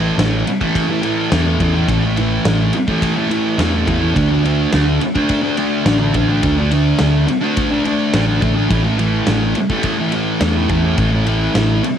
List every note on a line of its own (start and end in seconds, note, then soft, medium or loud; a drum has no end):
0.00 0.10 A1 loud
0.00 0.18 A2 medium
0.00 0.19 E3 medium
0.00 0.20 A3 medium
0.18 0.42 A1 medium
0.18 0.46 A2 medium
0.18 0.47 E3 medium
0.18 0.47 A3 medium
0.18 snare loud
0.18 ride medium
0.47 muted distorted electric guitar stroke soft
0.47 ride medium
0.61 0.90 E3 medium
0.61 0.88 A3 medium
0.61 kick medium
0.75 kick medium
0.75 ride medium
0.89 1.02 E3 medium
0.89 1.04 A3 medium
1.02 1.29 A2 medium
1.02 1.31 E3 medium
1.02 1.32 A3 medium
1.02 ride medium
1.31 1.56 E2 loud
1.31 1.59 A2 medium
1.31 1.47 E3 medium
1.31 1.46 A3 medium
1.31 snare loud
1.31 ride medium
1.46 1.60 E3 medium
1.46 1.62 A3 medium
1.60 1.84 E2 medium
1.60 1.87 A2 medium
1.60 1.75 E3 medium
1.60 1.73 A3 medium
1.60 kick medium
1.60 ride medium
1.74 1.88 E3 medium
1.74 1.90 A3 medium
1.88 2.37 A1 loud
1.88 2.16 A2 medium
1.88 2.04 E3 medium
1.88 2.02 A3 medium
1.88 kick loud
1.88 ride medium
2.03 2.17 E3 medium
2.03 2.19 A3 medium
2.17 2.44 A2 medium
2.17 2.45 E3 medium
2.17 2.47 A3 medium
2.17 ride medium
2.45 2.70 A1 medium
2.45 2.73 A2 medium
2.45 2.74 E3 medium
2.45 2.75 A3 medium
2.45 snare loud
2.45 ride medium
2.73 muted distorted electric guitar stroke soft
2.73 ride medium
2.88 3.17 E3 medium
2.88 3.16 A3 medium
2.88 kick medium
3.02 kick medium
3.02 ride medium
3.16 3.29 E3 medium
3.16 3.31 A3 medium
3.29 3.57 A2 medium
3.29 3.59 E3 medium
3.29 3.60 A3 medium
3.29 ride medium
3.58 3.83 E2 loud
3.58 3.86 A2 medium
3.58 3.73 E3 medium
3.58 3.72 A3 loud
3.58 snare loud
3.58 ride medium
3.72 3.86 E3 medium
3.72 3.89 A3 medium
3.87 4.12 E2 medium
3.87 4.14 A2 medium
3.87 4.01 E3 medium
3.87 4.00 A3 medium
3.87 kick medium
3.87 ride medium
4.00 4.15 E3 medium
4.00 4.16 A3 medium
4.15 4.65 D2 loud
4.15 4.44 D3 medium
4.15 4.31 A3 medium
4.15 4.29 D4 loud
4.15 kick loud
4.15 ride medium
4.29 4.44 A3 medium
4.29 4.45 D4 medium
4.44 4.71 D3 medium
4.44 4.73 A3 medium
4.44 4.74 D4 medium
4.44 ride medium
4.72 4.98 D2 medium
4.72 5.01 D3 medium
4.72 5.01 A3 medium
4.72 5.01 D4 medium
4.72 snare loud
4.72 ride medium
5.01 muted distorted electric guitar stroke soft
5.01 ride medium
5.15 5.44 A3 medium
5.15 5.41 D4 medium
5.15 kick medium
5.29 kick medium
5.29 ride medium
5.43 5.58 A3 medium
5.43 5.58 D4 medium
5.57 5.84 D3 medium
5.57 5.86 A3 medium
5.57 5.86 D4 medium
5.57 ride medium
5.85 6.11 A1 loud
5.85 6.13 D3 medium
5.85 6.02 A3 medium
5.85 5.98 D4 medium
5.85 snare loud
5.85 ride medium
6.00 6.15 A3 medium
6.00 6.15 D4 medium
6.14 6.39 A1 medium
6.14 6.42 D3 medium
6.14 6.30 A3 medium
6.14 6.27 D4 medium
6.14 kick medium
6.14 ride medium
6.29 6.44 A3 medium
6.29 6.44 D4 medium
6.43 6.92 D2 loud
6.43 6.70 D3 medium
6.43 6.60 A3 medium
6.43 6.57 D4 medium
6.43 kick loud
6.43 ride medium
6.58 6.72 A3 medium
6.58 6.72 D4 medium
6.71 6.98 D3 medium
6.71 7.00 A3 medium
6.71 7.00 D4 medium
6.71 ride medium
6.99 7.25 D2 medium
6.99 7.26 D3 medium
6.99 7.27 A3 medium
6.99 7.27 D4 medium
6.99 snare loud
6.99 ride loud
7.27 muted distorted electric guitar stroke soft
7.27 ride medium
7.41 7.73 A3 medium
7.41 7.70 D4 medium
7.57 kick loud
7.57 ride loud
7.71 7.85 A3 medium
7.71 7.86 D4 medium
7.84 8.12 D3 medium
7.84 8.14 A3 medium
7.84 8.14 D4 medium
7.84 ride medium
8.13 8.38 A1 loud
8.13 8.40 D3 medium
8.13 8.29 A3 medium
8.13 8.26 D4 loud
8.13 snare loud
8.13 ride medium
8.27 8.42 A3 soft
8.27 8.42 D4 medium
8.42 8.67 A1 medium
8.42 8.69 D3 medium
8.42 8.57 A3 medium
8.42 8.54 D4 medium
8.42 kick medium
8.42 ride medium
8.55 8.70 A3 medium
8.55 8.68 D4 medium
8.70 9.20 A1 loud
8.70 8.98 A2 medium
8.70 8.86 E3 medium
8.70 8.83 A3 medium
8.70 kick loud
8.70 ride medium
8.84 8.99 E3 medium
8.84 9.00 A3 medium
8.98 9.27 A2 medium
8.98 9.28 E3 medium
8.98 9.29 A3 medium
8.98 ride medium
9.27 9.52 A1 medium
9.27 9.56 A2 medium
9.27 9.56 E3 medium
9.27 9.57 A3 medium
9.27 snare loud
9.27 ride medium
9.55 muted distorted electric guitar stroke soft
9.55 ride medium
9.70 10.00 E3 medium
9.70 9.97 A3 medium
9.70 kick medium
9.83 kick medium
9.83 ride medium
9.98 10.13 E3 medium
9.98 10.13 A3 medium
10.12 10.39 A2 medium
10.12 10.41 E3 medium
10.12 10.42 A3 medium
10.12 ride medium
10.40 10.66 E2 medium
10.40 10.67 A2 medium
10.40 10.57 E3 medium
10.40 10.54 A3 loud
10.40 snare loud
10.40 ride medium
10.55 10.69 E3 medium
10.55 10.69 A3 medium
10.69 10.94 E2 medium
10.69 10.96 A2 medium
10.69 10.85 E3 medium
10.69 10.82 A3 medium
10.69 kick medium
10.69 ride medium
10.83 10.98 E3 medium
10.83 10.98 A3 medium
10.97 11.47 A1 loud
10.97 11.26 A2 medium
10.97 11.14 E3 medium
10.97 11.11 A3 loud
10.97 kick loud
10.97 ride medium
11.12 11.28 E3 medium
11.12 11.28 A3 medium
11.27 11.54 A2 medium
11.27 11.56 E3 medium
11.27 11.56 A3 medium
11.27 ride medium
11.55 11.80 A1 medium
11.55 11.83 A2 medium
11.55 11.83 E3 medium
11.55 11.84 A3 medium
11.55 snare loud
11.55 ride medium
11.84 muted distorted electric guitar stroke soft
11.84 ride medium